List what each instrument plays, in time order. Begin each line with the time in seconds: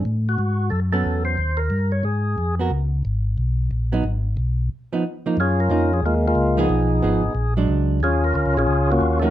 0.05 tonewheel organ A2
0.29 tonewheel organ F#4
0.38 tonewheel organ G#2
0.70 tonewheel organ F#2 A4
0.92 hollow-body jazz guitar F#3 B3 C#4, tonewheel organ A4
1.05 tonewheel organ E2
1.25 tonewheel organ C5
1.38 tonewheel organ D#2
1.57 tonewheel organ A#4
1.70 tonewheel organ G2
1.92 tonewheel organ C#5
2.03 tonewheel organ G#2 G#4
2.38 tonewheel organ F2
2.59 hollow-body jazz guitar B3 F#4 A#4
2.70 tonewheel organ C#2
3.05 tonewheel organ G#1
3.38 tonewheel organ B1
3.71 tonewheel organ A#1
3.92 hollow-body jazz guitar F#3 B3 D#4
4.04 tonewheel organ G#1
4.37 tonewheel organ B1
4.93 hollow-body jazz guitar F3 B3 D#4
5.26 hollow-body jazz guitar F3 A#3 D#4
5.37 tonewheel organ F#2 C#4 F4 G#4
5.60 tonewheel organ A#4
5.70 tonewheel organ F2 A#4, hollow-body jazz guitar F3 A#3 D#4
5.93 tonewheel organ G#4
6.02 tonewheel organ D#2 G#3 A#3 F4
6.27 tonewheel organ G#3 A#3 F4
6.35 tonewheel organ C#2
6.57 hollow-body jazz guitar F3 B3 D#4 G#4, tonewheel organ B3 D#4 G#4
6.69 tonewheel organ B1
7.02 tonewheel organ G#1, hollow-body jazz guitar F3 B3 D#4 G#4
7.23 tonewheel organ G#1
7.35 tonewheel organ A#1
7.57 hollow-body jazz guitar F#3 G#3 D4
7.68 tonewheel organ C#2
8.00 tonewheel organ D#2 C#4 F4 G#4
8.24 tonewheel organ A#4
8.34 tonewheel organ D2 A#4
8.46 tonewheel organ C#2
8.56 tonewheel organ A#1 C#4 F4 G#4
8.67 tonewheel organ C#2
8.92 tonewheel organ A#3 C#4 F#4
9.01 tonewheel organ D#2
9.20 hollow-body jazz guitar F3 A3 D#4 F#4, tonewheel organ A4
9.24 tonewheel organ A#4